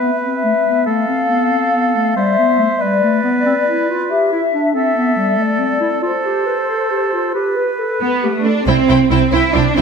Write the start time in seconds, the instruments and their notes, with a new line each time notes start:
Already playing: oboe B4, flute section E5
0.01 clarinet B3
0.22 clarinet C4, flute section E5
0.44 clarinet A3
0.66 clarinet B3
0.86 clarinet A3, oboe A4, flute section F5
1.07 clarinet C4
1.28 clarinet B3
1.51 clarinet C4
1.74 clarinet B3
1.95 clarinet A3
2.15 clarinet G3, oboe C5, flute section E5
2.38 clarinet B3
2.59 clarinet A3
2.81 clarinet G3, oboe B4, flute section D5
3.04 clarinet A3
3.24 clarinet B3
3.46 clarinet C4
3.67 clarinet E4
3.89 clarinet F4
4.10 clarinet G4, flute section E5
4.32 clarinet E4
4.53 clarinet D4
4.74 clarinet C4, oboe A4, flute section E5
4.95 clarinet B3
5.16 clarinet G3
5.38 clarinet A3, flute section D5
5.59 clarinet C4
5.81 clarinet E4
6.02 clarinet F4, oboe A4, flute section C5
6.25 clarinet G4
6.46 clarinet B4
6.69 clarinet A4
6.91 clarinet G4
7.13 clarinet F4
7.34 clarinet G4, oboe B4, flute section B4
7.56 clarinet B4
7.79 clarinet A4
8.00 cello section B3, clarinet B4
8.23 cello section A3, clarinet G4
8.44 cello section D4, clarinet A4
8.67 double bass section C2, cello section C4, viola section E4, violin section C5 G5
8.89 double bass section C2, viola section E4, violin section C5 G5
9.10 double bass section C2, cello section C4, viola section E4, violin section C5 G5
9.32 double bass section C2, viola section E4, cello section E4, violin section C5 G5
9.53 double bass section C2, cello section D4, viola section E4, violin section C5 G5
9.75 double bass section C2, cello section C4, viola section E4, violin section C5 G5